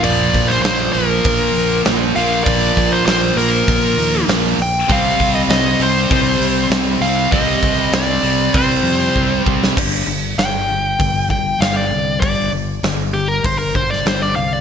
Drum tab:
CC |x---------------|----------------|----------------|----------------|
HH |--o-o-o-o-o-o-o-|o-o-o-o-o-o-o-o-|o-o-o-o-o-o-o-o-|o-o-o-o-o-o-----|
SD |---oo-------o---|----o-------o---|----o-------o---|----o----------o|
BD |--o-----o-------|o-o-----o-------|o-o-----o-------|o-o-----o---o-o-|

CC |x---------------|----------------|
HH |----o---o---o---|o---o---o---o---|
SD |----o-------o---|----o------oo---|
BD |o-------o-o-----|o-------o-o-----|